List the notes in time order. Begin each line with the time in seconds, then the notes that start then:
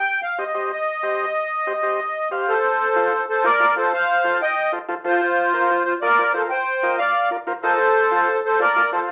Already playing: G5
0.23 F5
0.38 G4 C5 D#5
0.54 G4 C5 D#5
0.72 D#5
1.03 G4 C5 D#5
1.67 G4 C5 D#5
1.83 G4 C5 D#5
2.31 G4 C5 F5
2.48 A4 C5
2.96 F4 A4 C5
3.29 A4 C5
3.44 F4 A4 A#4 D5 D#5
3.60 F4 A4 C5
3.76 F4 A4 C5
3.93 C5 F5
4.24 F4 A4 C5
4.42 D#5 G5
4.72 F4 A4 C5
4.89 F4 A4 C5
5.04 F4 A4 C5
5.53 F4 A#4 C5
5.84 F4 C5
6.01 F4 A#4 D5 D#5
6.19 F4 A#4 C5
6.33 F4 A4 A#4 C5
6.50 C5 G5
6.83 F4 A#4 D#5
6.98 D5 F5
7.31 F4 A#4 D5
7.47 F4 A#4 C5
7.63 F4 A4 A#4 C5 D#5
8.11 F4 A4 C5
8.45 A4 C5
8.60 F4 A4 A#4 C5 D5
8.76 F4 A4 D#5
8.92 F4 A4 C5